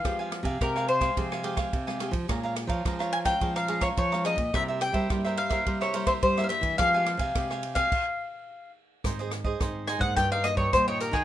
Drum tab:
CC |----------------|----------------|----------------|--------x-------|
RD |x-xxx-xxx-xxx-xx|x-xxx-xxx-xxx-xx|x-xxx-xxx-xxx-xx|x-xxx-xx--------|
HH |----------------|----------------|----------------|----------------|
SD |r-r-rr-r-r-r-rr-|r-r-rr-r-r-r-rr-|r-r-rr-r-r-r-rr-|r-r-rr-r--------|
BD |o--oo--oo--oo--o|o--oo--oo--oo--o|o--oo--oo--oo--o|o--oo--oo-------|

CC |----------------|
RD |----------------|
HH |xxx-x-x-x-x-x-x-|
SD |r-r-r-r-r-r-r--r|
BD |o--oo--oo--oo--o|